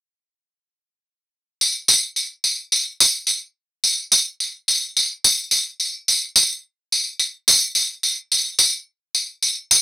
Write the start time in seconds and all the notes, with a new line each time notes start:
1.61 tambourine
1.88 tambourine
2.16 tambourine
2.44 tambourine
2.72 tambourine
3.00 tambourine
3.27 tambourine
3.84 tambourine
4.12 tambourine
4.40 tambourine
4.68 tambourine
4.97 tambourine
5.24 tambourine
5.51 tambourine
5.80 tambourine
6.08 tambourine
6.36 tambourine
6.92 tambourine
7.20 tambourine
7.48 tambourine
7.75 tambourine
8.03 tambourine
8.32 tambourine
8.59 tambourine
9.15 tambourine
9.43 tambourine
9.71 tambourine